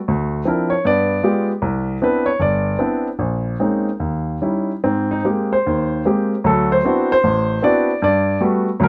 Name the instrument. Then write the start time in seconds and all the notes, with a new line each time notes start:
grand piano
0.08 D2
0.45 F3 C4 D4 E4 A#4
0.70 C#5
0.85 G2 B3 D5
1.23 G#3 B3 F4 G4
1.62 C2
2.02 B3 C4 D4 E4 B4
2.26 C#5
2.40 G1 D5
2.79 B3 C4 D4 E4
3.19 A#1
3.60 G#3 A#3 C4 C#4 D#4
4.00 D#2
4.42 G3 C#4 D#4 E4
4.84 G#2 C4
5.11 D#4
5.25 G#3 A#3 C4 G4
5.53 C5
5.67 D#2
6.05 G#3 A#3 C4 G4
6.44 D2 F#3 A4
6.72 C5
6.85 B3 C4 D4 E4 F#4
7.12 C5
7.24 A1
7.63 B3 C4 D4 E4 F#4 D5
8.02 G2 D5
8.40 G3 A3 B3 F#4
8.80 D2 F#3 A#4